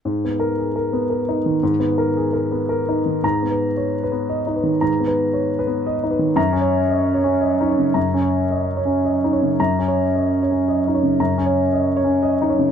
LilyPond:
<<
  \new Staff \with { instrumentName = "Grand piano" } { \time 3/4 \key gis \minor \tempo 4 = 113 << { \tuplet 3/2 { r4 ais'8 } r2 | r2. | ais''4 r2 | r2. |
ais''4 r2 | r2. | ais''4 r2 | r2. | } \\ { r2. | r2. | r8 b'8 cis''8 b'8 dis''8 b'8 | ais''8 b'8 cis''8 b'8 dis''8 b'8 |
r8 cis''8 dis''8 cis''8 dis''8 cis''8 | ais''8 cis''8 dis''8 cis''8 dis''8 cis''8 | r8 cis''8 dis''8 cis''8 dis''8 cis''8 | ais''8 cis''8 dis''8 cis''8 dis''8 cis''8 | } >> }
  \new Staff \with { instrumentName = "Grand piano" } { \time 3/4 \key gis \minor \tuplet 3/2 { gis,8 b4 gis'8 ais'8 b8 ais'8 dis'8 dis8 } | \tuplet 3/2 { gis,8 b8 ais'8 gis'8 ais'8 b8 ais'8 dis'8 dis8 } | \tuplet 3/2 { gis,8 b4 r4 b8~ b8 dis'8 dis8 } | \tuplet 3/2 { gis,8 b4 r4 b8~ b8 dis'8 dis8 } |
\tuplet 3/2 { fis,8 cis'4 r4 cis'8~ cis'8 dis'8 cis8 } | \tuplet 3/2 { fis,8 cis'4 r4 cis'8~ cis'8 dis'8 cis8 } | \tuplet 3/2 { fis,8 cis'4 r4 cis'8~ cis'8 dis'8 cis8 } | \tuplet 3/2 { fis,8 cis'4 r4 cis'8~ cis'8 dis'8 cis8 } | }
>>